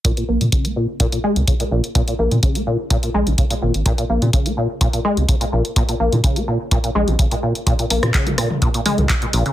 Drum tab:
HH |xx-xxx--xx-xxx-x|xx-xxx--xx-xxx-x|xx-xxx--xx-xxx-x|xx-xxx--xx-xxx-x|
CP |----------------|----------------|----------------|----------------|
SD |----------------|----------------|----------------|----------------|
T2 |----------------|----------------|----------------|----------------|
BD |o---o---o---o---|o---o---o---o---|o---o---o---o---|o---o---o---o---|

HH |xxoxxxo-xxoxxxox|
CP |----x-------x---|
SD |---r--r---------|
T2 |-----o-o--oo----|
BD |o---o---o---o---|